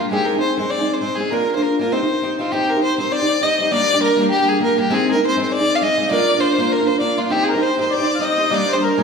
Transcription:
Already playing: steel-string acoustic guitar A#3, fiddle F4
0.00 steel-string acoustic guitar G3 D4 G4
0.11 steel-string acoustic guitar G#3 C4 D#4 G#4, fiddle G4
0.25 fiddle A#4
0.35 steel-string acoustic guitar C4 D#4 G#4
0.40 fiddle C5
0.57 steel-string acoustic guitar G#3 C4 D#4 G#4, fiddle C5
0.70 fiddle D5
0.78 steel-string acoustic guitar C4 D#4 G#4
0.93 fiddle C5
1.00 steel-string acoustic guitar G#3 C4 D#4 G#4, fiddle C5
1.15 steel-string acoustic guitar G#3 C4, fiddle G#4
1.20 steel-string acoustic guitar D#4 G#4
1.31 steel-string acoustic guitar A#3 D4 F4 A#4, fiddle A#4
1.55 steel-string acoustic guitar D4 F4 A#4, fiddle C5
1.62 fiddle A#4
1.79 steel-string acoustic guitar A#3 D4 F4 A#4, fiddle A#4
1.92 steel-string acoustic guitar C4 D#4 G4 C5, fiddle C5
2.00 steel-string acoustic guitar D#4 G4 C5
2.22 steel-string acoustic guitar C4 D#4 G4 C5
2.39 steel-string acoustic guitar C4 D#4 G4 C5, fiddle F4
2.52 steel-string acoustic guitar C4 D#4 G4 C5, fiddle G4
2.69 fiddle A#4
2.75 steel-string acoustic guitar D#4 G4 C5
2.83 fiddle C5
2.98 steel-string acoustic guitar C4 D#4 G4 C5, fiddle C5
3.12 fiddle D5
3.19 steel-string acoustic guitar D#4 G4 C5
3.41 steel-string acoustic guitar C4 D#4 G4 C5, fiddle D#5
3.59 steel-string acoustic guitar C4 D#4 G4 C5
3.64 fiddle D#5
3.71 steel-string acoustic guitar G3 A#3 D4 G4, fiddle D5
3.94 steel-string acoustic guitar G3 D4 G4
4.02 fiddle A#4
4.17 steel-string acoustic guitar G3 A#3 D4 G4
4.31 fiddle G4
4.39 steel-string acoustic guitar G3 D4 G4
4.48 fiddle G#4
4.60 steel-string acoustic guitar G3 A#3 D4 G4, fiddle A#4
4.76 steel-string acoustic guitar G3 A#3 D4 G4, fiddle G4
4.90 steel-string acoustic guitar G#3 C4 D#4 G#4, fiddle G#4
5.11 steel-string acoustic guitar G#4, fiddle A#4
5.15 steel-string acoustic guitar C4 D#4
5.26 fiddle C5
5.36 steel-string acoustic guitar G#3 C4 D#4 G#4
5.42 fiddle C5
5.52 fiddle D5
5.59 steel-string acoustic guitar C4 D#4 G#4
5.75 fiddle F5
5.81 steel-string acoustic guitar G#3 C4 D#4 G#4, fiddle D#5
5.97 steel-string acoustic guitar G#3 C4 D#4 G#4
6.11 steel-string acoustic guitar A#3 D4 F4 A#4, fiddle D5
6.35 steel-string acoustic guitar D4 F4 A#4
6.41 fiddle C5
6.58 steel-string acoustic guitar A#3 D4 F4 A#4
6.72 fiddle A#4
6.79 steel-string acoustic guitar D4 F4 A#4
6.87 fiddle C5
7.00 steel-string acoustic guitar A#3 D4 F4, fiddle D5
7.04 steel-string acoustic guitar A#4
7.18 steel-string acoustic guitar A#3 D4 F4 A#4, fiddle F4
7.30 steel-string acoustic guitar C4 D#4 G4 C5, fiddle G4, accordion G4
7.43 fiddle G#4
7.48 fiddle A#4, accordion A#4
7.54 steel-string acoustic guitar D#4 G4 C5
7.60 accordion C5, fiddle C5
7.77 steel-string acoustic guitar C4 D#4 G4 C5, fiddle C5
7.90 accordion D5, fiddle D5
7.98 steel-string acoustic guitar D#4 G4 C5
8.15 accordion F5
8.19 steel-string acoustic guitar C4 D#4 G4 C5, accordion D#5
8.24 fiddle D#5
8.37 steel-string acoustic guitar C4 D#4 G4 C5
8.50 steel-string acoustic guitar G3 A#3 D4 G4, accordion D5
8.55 fiddle D5
8.68 accordion C5
8.73 steel-string acoustic guitar D4 G4, fiddle C5
8.77 steel-string acoustic guitar G3
8.82 accordion A#4, fiddle A#4
8.97 steel-string acoustic guitar G3 A#3 D4, accordion G#4

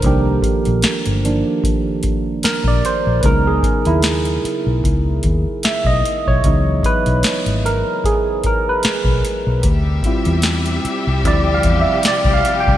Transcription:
Already playing: tine electric piano D#3 F3 A#3 D4 A4 A#4 C5
0.02 fingered electric bass C2, tine electric piano D#3 F3 A#3 D4 G4, kick, closed hi-hat
0.43 kick, closed hi-hat
0.65 fingered electric bass A#1, closed hi-hat
0.82 muted fingered electric bass stroke, snare, closed hi-hat
1.06 fingered electric bass G1, closed hi-hat
1.24 tine electric piano D#3 F3 A#3 D4, closed hi-hat
1.64 kick, closed hi-hat
2.03 kick, closed hi-hat
2.43 tine electric piano A#4, muted fingered electric bass stroke, snare, closed hi-hat
2.64 fingered electric bass A#1, tine electric piano D5, kick
2.85 tine electric piano C5, closed hi-hat
3.07 fingered electric bass A#1
3.21 fingered electric bass C#2, tine electric piano C#3 B4, kick, closed hi-hat
3.25 tine electric piano F#3 B3 D#4 A#4
3.47 tine electric piano G#4
3.63 kick, closed hi-hat
3.85 fingered electric bass D#2, tine electric piano E4, closed hi-hat
4.03 snare, closed hi-hat
4.25 closed hi-hat
4.45 muted fingered electric bass stroke, closed hi-hat
4.67 fingered electric bass B1
4.84 fingered electric bass C#2, kick, closed hi-hat
5.23 fingered electric bass D#2, kick, closed hi-hat
5.63 tine electric piano E5, muted fingered electric bass stroke, snare, closed hi-hat
5.85 fingered electric bass B1, tine electric piano D#5, kick
6.05 closed hi-hat
6.28 fingered electric bass B1, tine electric piano C#5, kick
6.44 fingered electric bass C#2, tine electric piano E3 F#3 B3 D#4, kick, closed hi-hat
6.83 tine electric piano B4, kick, closed hi-hat
7.06 fingered electric bass B1, closed hi-hat
7.23 muted fingered electric bass stroke, snare, closed hi-hat
7.46 fingered electric bass G#1, closed hi-hat
7.66 tine electric piano A#4, closed hi-hat
8.04 tine electric piano G#4, kick, closed hi-hat
8.44 tine electric piano A#4, kick, closed hi-hat
8.69 tine electric piano B4
8.83 muted fingered electric bass stroke, snare, closed hi-hat
9.04 fingered electric bass B1, kick
9.25 closed hi-hat
9.47 fingered electric bass B1
9.63 fingered electric bass D2, string section C3 G3 G4 E5, kick, closed hi-hat
10.03 tine electric piano G3 C4 E4 F4, kick, closed hi-hat
10.25 fingered electric bass E2, closed hi-hat
10.42 snare, closed hi-hat
10.66 closed hi-hat
10.85 muted fingered electric bass stroke, closed hi-hat
11.07 fingered electric bass C2
11.24 fingered electric bass D2, tine electric piano F3 G3 C4 E4 D5, kick, closed hi-hat
11.54 tine electric piano F5
11.63 fingered electric bass E2, kick, closed hi-hat
11.81 tine electric piano E5
12.03 muted fingered electric bass stroke, snare, closed hi-hat
12.08 tine electric piano D5
12.25 fingered electric bass C2, kick
12.34 tine electric piano F5
12.45 closed hi-hat
12.60 tine electric piano G5
12.67 fingered electric bass C2, kick

